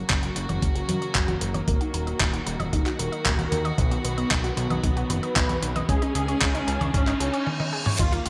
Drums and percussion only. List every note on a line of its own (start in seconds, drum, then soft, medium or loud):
0.10 kick loud
0.10 clap loud
0.10 closed hi-hat medium
0.23 closed hi-hat soft
0.36 closed hi-hat medium
0.49 closed hi-hat soft
0.49 high conga medium
0.62 kick loud
0.62 closed hi-hat medium
0.76 closed hi-hat soft
0.89 closed hi-hat loud
0.89 high conga medium
1.02 closed hi-hat soft
1.15 kick loud
1.15 clap loud
1.15 closed hi-hat medium
1.28 closed hi-hat soft
1.28 high conga medium
1.41 closed hi-hat medium
1.54 closed hi-hat soft
1.54 high conga medium
1.68 kick loud
1.68 closed hi-hat medium
1.81 closed hi-hat soft
1.94 closed hi-hat medium
2.07 closed hi-hat soft
2.20 kick loud
2.20 clap loud
2.20 closed hi-hat medium
2.34 closed hi-hat soft
2.47 closed hi-hat medium
2.60 closed hi-hat soft
2.60 high conga medium
2.73 kick loud
2.73 closed hi-hat medium
2.86 clap soft
2.86 closed hi-hat soft
2.99 closed hi-hat loud
3.13 closed hi-hat soft
3.25 kick loud
3.25 clap loud
3.25 closed hi-hat medium
3.39 closed hi-hat soft
3.39 high conga medium
3.52 closed hi-hat loud
3.52 high conga medium
3.65 closed hi-hat soft
3.78 kick loud
3.78 closed hi-hat medium
3.91 closed hi-hat soft
4.05 closed hi-hat loud
4.18 closed hi-hat soft
4.31 kick loud
4.31 clap loud
4.31 closed hi-hat medium
4.44 closed hi-hat soft
4.57 closed hi-hat medium
4.70 closed hi-hat soft
4.70 high conga medium
4.83 kick loud
4.83 closed hi-hat medium
4.97 closed hi-hat soft
5.10 closed hi-hat loud
5.10 high conga medium
5.23 closed hi-hat soft
5.36 kick loud
5.36 clap loud
5.36 closed hi-hat medium
5.49 closed hi-hat soft
5.49 high conga medium
5.63 closed hi-hat loud
5.76 closed hi-hat soft
5.76 high conga medium
5.89 kick loud
5.89 closed hi-hat medium
6.02 closed hi-hat soft
6.15 closed hi-hat medium
6.28 closed hi-hat soft
6.41 kick loud
6.41 clap loud
6.41 closed hi-hat medium
6.55 closed hi-hat soft
6.68 closed hi-hat medium
6.81 closed hi-hat soft
6.81 high conga medium
6.94 kick loud
6.94 closed hi-hat medium
7.07 clap soft
7.07 closed hi-hat soft
7.20 closed hi-hat medium
7.34 closed hi-hat soft
7.47 high tom medium
7.60 high tom medium
7.86 mid tom medium
7.99 kick loud
7.99 closed hi-hat loud
7.99 crash loud
8.13 closed hi-hat soft
8.26 closed hi-hat medium